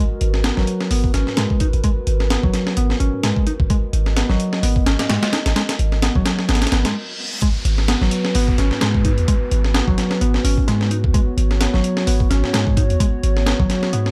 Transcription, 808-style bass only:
0, 0, Header, 1, 2, 480
1, 0, Start_track
1, 0, Key_signature, 5, "minor"
1, 0, Tempo, 465116
1, 1898, Time_signature, 4, 2, 24, 8
1, 14562, End_track
2, 0, Start_track
2, 0, Title_t, "808-style bass"
2, 0, Program_c, 0, 38
2, 220, Note_on_c, 0, 32, 96
2, 525, Note_off_c, 0, 32, 0
2, 594, Note_on_c, 0, 32, 93
2, 665, Note_off_c, 0, 32, 0
2, 937, Note_on_c, 0, 32, 82
2, 1110, Note_off_c, 0, 32, 0
2, 1180, Note_on_c, 0, 32, 96
2, 1271, Note_off_c, 0, 32, 0
2, 1314, Note_on_c, 0, 44, 43
2, 1398, Note_off_c, 0, 44, 0
2, 1420, Note_on_c, 0, 44, 78
2, 1511, Note_off_c, 0, 44, 0
2, 1792, Note_on_c, 0, 32, 87
2, 1864, Note_off_c, 0, 32, 0
2, 2137, Note_on_c, 0, 32, 97
2, 2444, Note_off_c, 0, 32, 0
2, 2512, Note_on_c, 0, 32, 96
2, 2584, Note_off_c, 0, 32, 0
2, 2860, Note_on_c, 0, 32, 85
2, 3032, Note_off_c, 0, 32, 0
2, 3099, Note_on_c, 0, 32, 90
2, 3190, Note_off_c, 0, 32, 0
2, 3235, Note_on_c, 0, 44, 44
2, 3318, Note_off_c, 0, 44, 0
2, 3338, Note_on_c, 0, 44, 80
2, 3430, Note_off_c, 0, 44, 0
2, 3713, Note_on_c, 0, 32, 88
2, 3785, Note_off_c, 0, 32, 0
2, 4058, Note_on_c, 0, 32, 100
2, 4364, Note_off_c, 0, 32, 0
2, 4432, Note_on_c, 0, 32, 97
2, 4504, Note_off_c, 0, 32, 0
2, 4778, Note_on_c, 0, 32, 89
2, 4951, Note_off_c, 0, 32, 0
2, 5018, Note_on_c, 0, 32, 96
2, 5110, Note_off_c, 0, 32, 0
2, 5151, Note_on_c, 0, 44, 44
2, 5236, Note_off_c, 0, 44, 0
2, 5255, Note_on_c, 0, 44, 78
2, 5348, Note_off_c, 0, 44, 0
2, 5633, Note_on_c, 0, 32, 89
2, 5705, Note_off_c, 0, 32, 0
2, 5978, Note_on_c, 0, 32, 96
2, 6284, Note_off_c, 0, 32, 0
2, 6352, Note_on_c, 0, 32, 96
2, 6424, Note_off_c, 0, 32, 0
2, 6698, Note_on_c, 0, 32, 88
2, 6871, Note_off_c, 0, 32, 0
2, 6935, Note_on_c, 0, 32, 97
2, 7063, Note_off_c, 0, 32, 0
2, 7069, Note_on_c, 0, 44, 44
2, 7155, Note_off_c, 0, 44, 0
2, 7895, Note_on_c, 0, 32, 99
2, 8203, Note_off_c, 0, 32, 0
2, 8270, Note_on_c, 0, 32, 96
2, 8343, Note_off_c, 0, 32, 0
2, 8618, Note_on_c, 0, 32, 87
2, 8791, Note_off_c, 0, 32, 0
2, 8860, Note_on_c, 0, 32, 98
2, 8988, Note_off_c, 0, 32, 0
2, 8994, Note_on_c, 0, 44, 46
2, 9078, Note_off_c, 0, 44, 0
2, 9098, Note_on_c, 0, 44, 92
2, 9474, Note_on_c, 0, 39, 107
2, 9489, Note_off_c, 0, 44, 0
2, 9545, Note_off_c, 0, 39, 0
2, 9821, Note_on_c, 0, 32, 101
2, 10126, Note_off_c, 0, 32, 0
2, 10193, Note_on_c, 0, 32, 98
2, 10265, Note_off_c, 0, 32, 0
2, 10541, Note_on_c, 0, 32, 83
2, 10712, Note_off_c, 0, 32, 0
2, 10779, Note_on_c, 0, 32, 98
2, 10907, Note_off_c, 0, 32, 0
2, 10914, Note_on_c, 0, 44, 45
2, 10998, Note_off_c, 0, 44, 0
2, 11019, Note_on_c, 0, 44, 90
2, 11393, Note_on_c, 0, 39, 104
2, 11409, Note_off_c, 0, 44, 0
2, 11465, Note_off_c, 0, 39, 0
2, 11739, Note_on_c, 0, 32, 102
2, 12044, Note_off_c, 0, 32, 0
2, 12114, Note_on_c, 0, 32, 98
2, 12185, Note_off_c, 0, 32, 0
2, 12460, Note_on_c, 0, 32, 86
2, 12632, Note_off_c, 0, 32, 0
2, 12701, Note_on_c, 0, 32, 100
2, 12829, Note_off_c, 0, 32, 0
2, 12835, Note_on_c, 0, 44, 45
2, 12918, Note_off_c, 0, 44, 0
2, 12941, Note_on_c, 0, 44, 88
2, 13314, Note_on_c, 0, 39, 107
2, 13330, Note_off_c, 0, 44, 0
2, 13385, Note_off_c, 0, 39, 0
2, 13659, Note_on_c, 0, 32, 101
2, 13964, Note_off_c, 0, 32, 0
2, 14030, Note_on_c, 0, 32, 96
2, 14103, Note_off_c, 0, 32, 0
2, 14377, Note_on_c, 0, 44, 95
2, 14550, Note_off_c, 0, 44, 0
2, 14562, End_track
0, 0, End_of_file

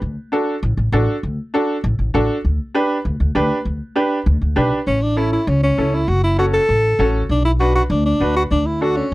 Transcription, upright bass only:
0, 0, Header, 1, 2, 480
1, 0, Start_track
1, 0, Key_signature, 2, "major"
1, 0, Tempo, 303030
1, 36, Time_signature, 4, 2, 24, 8
1, 14479, End_track
2, 0, Start_track
2, 0, Title_t, "Upright bass"
2, 0, Program_c, 0, 32
2, 26, Note_on_c, 0, 38, 80
2, 222, Note_off_c, 0, 38, 0
2, 992, Note_on_c, 0, 33, 96
2, 1186, Note_off_c, 0, 33, 0
2, 1226, Note_on_c, 0, 33, 80
2, 1422, Note_off_c, 0, 33, 0
2, 1463, Note_on_c, 0, 33, 97
2, 1661, Note_off_c, 0, 33, 0
2, 1952, Note_on_c, 0, 38, 81
2, 2146, Note_off_c, 0, 38, 0
2, 2911, Note_on_c, 0, 33, 96
2, 3105, Note_off_c, 0, 33, 0
2, 3149, Note_on_c, 0, 33, 77
2, 3344, Note_off_c, 0, 33, 0
2, 3398, Note_on_c, 0, 33, 91
2, 3589, Note_off_c, 0, 33, 0
2, 3874, Note_on_c, 0, 38, 78
2, 4067, Note_off_c, 0, 38, 0
2, 4832, Note_on_c, 0, 38, 85
2, 5026, Note_off_c, 0, 38, 0
2, 5070, Note_on_c, 0, 38, 82
2, 5265, Note_off_c, 0, 38, 0
2, 5310, Note_on_c, 0, 38, 95
2, 5504, Note_off_c, 0, 38, 0
2, 5787, Note_on_c, 0, 38, 77
2, 5983, Note_off_c, 0, 38, 0
2, 6751, Note_on_c, 0, 38, 94
2, 6945, Note_off_c, 0, 38, 0
2, 6994, Note_on_c, 0, 38, 79
2, 7186, Note_off_c, 0, 38, 0
2, 7232, Note_on_c, 0, 35, 91
2, 7425, Note_off_c, 0, 35, 0
2, 7713, Note_on_c, 0, 33, 88
2, 8482, Note_off_c, 0, 33, 0
2, 8669, Note_on_c, 0, 37, 97
2, 9055, Note_off_c, 0, 37, 0
2, 9156, Note_on_c, 0, 37, 76
2, 9539, Note_off_c, 0, 37, 0
2, 9629, Note_on_c, 0, 30, 91
2, 10400, Note_off_c, 0, 30, 0
2, 10595, Note_on_c, 0, 33, 90
2, 10980, Note_off_c, 0, 33, 0
2, 11069, Note_on_c, 0, 33, 85
2, 11456, Note_off_c, 0, 33, 0
2, 11553, Note_on_c, 0, 35, 83
2, 12323, Note_off_c, 0, 35, 0
2, 12510, Note_on_c, 0, 38, 100
2, 12897, Note_off_c, 0, 38, 0
2, 12994, Note_on_c, 0, 38, 77
2, 13380, Note_off_c, 0, 38, 0
2, 13480, Note_on_c, 0, 38, 83
2, 14248, Note_off_c, 0, 38, 0
2, 14479, End_track
0, 0, End_of_file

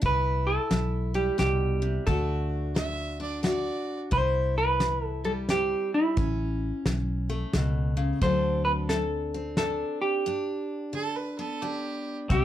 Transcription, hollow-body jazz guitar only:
0, 0, Header, 1, 2, 480
1, 0, Start_track
1, 0, Key_signature, 1, "major"
1, 0, Tempo, 681818
1, 25, Time_signature, 3, 2, 24, 8
1, 8763, End_track
2, 0, Start_track
2, 0, Title_t, "Hollow-body jazz guitar"
2, 0, Program_c, 0, 26
2, 40, Note_on_c, 0, 71, 95
2, 329, Note_on_c, 0, 69, 85
2, 348, Note_off_c, 0, 71, 0
2, 808, Note_off_c, 0, 69, 0
2, 811, Note_on_c, 0, 67, 78
2, 973, Note_off_c, 0, 67, 0
2, 980, Note_on_c, 0, 67, 80
2, 1435, Note_off_c, 0, 67, 0
2, 1454, Note_on_c, 0, 69, 72
2, 1912, Note_off_c, 0, 69, 0
2, 2905, Note_on_c, 0, 72, 91
2, 3220, Note_off_c, 0, 72, 0
2, 3223, Note_on_c, 0, 71, 95
2, 3561, Note_off_c, 0, 71, 0
2, 3561, Note_on_c, 0, 69, 95
2, 3669, Note_off_c, 0, 69, 0
2, 3697, Note_on_c, 0, 69, 81
2, 3743, Note_off_c, 0, 69, 0
2, 3873, Note_on_c, 0, 67, 88
2, 4155, Note_off_c, 0, 67, 0
2, 4184, Note_on_c, 0, 64, 75
2, 5589, Note_off_c, 0, 64, 0
2, 5791, Note_on_c, 0, 72, 101
2, 6073, Note_off_c, 0, 72, 0
2, 6088, Note_on_c, 0, 71, 89
2, 6135, Note_off_c, 0, 71, 0
2, 6259, Note_on_c, 0, 69, 89
2, 6734, Note_off_c, 0, 69, 0
2, 6742, Note_on_c, 0, 69, 91
2, 7048, Note_off_c, 0, 69, 0
2, 7051, Note_on_c, 0, 67, 76
2, 8460, Note_off_c, 0, 67, 0
2, 8670, Note_on_c, 0, 67, 86
2, 8763, Note_off_c, 0, 67, 0
2, 8763, End_track
0, 0, End_of_file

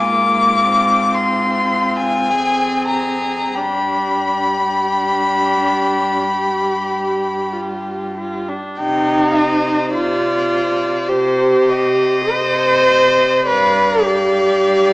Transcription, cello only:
0, 0, Header, 1, 2, 480
1, 0, Start_track
1, 0, Key_signature, -3, "minor"
1, 0, Tempo, 1138520
1, 967, Tempo, 1263158
1, 1447, Tempo, 1339286
1, 1448, Time_signature, 4, 2, 24, 8
1, 2407, Tempo, 1276596
1, 3367, Tempo, 1151631
1, 4327, Tempo, 1242236
1, 4807, Tempo, 1125704
1, 5914, End_track
2, 0, Start_track
2, 0, Title_t, "Cello"
2, 0, Program_c, 0, 42
2, 0, Note_on_c, 0, 44, 59
2, 969, Note_on_c, 0, 41, 47
2, 975, Note_off_c, 0, 44, 0
2, 1437, Note_off_c, 0, 41, 0
2, 1439, Note_on_c, 0, 43, 54
2, 3269, Note_off_c, 0, 43, 0
2, 3370, Note_on_c, 0, 48, 64
2, 3789, Note_off_c, 0, 48, 0
2, 3852, Note_on_c, 0, 48, 60
2, 4273, Note_off_c, 0, 48, 0
2, 4333, Note_on_c, 0, 48, 64
2, 4754, Note_off_c, 0, 48, 0
2, 4812, Note_on_c, 0, 48, 60
2, 5242, Note_off_c, 0, 48, 0
2, 5299, Note_on_c, 0, 43, 68
2, 5716, Note_off_c, 0, 43, 0
2, 5769, Note_on_c, 0, 43, 65
2, 5914, Note_off_c, 0, 43, 0
2, 5914, End_track
0, 0, End_of_file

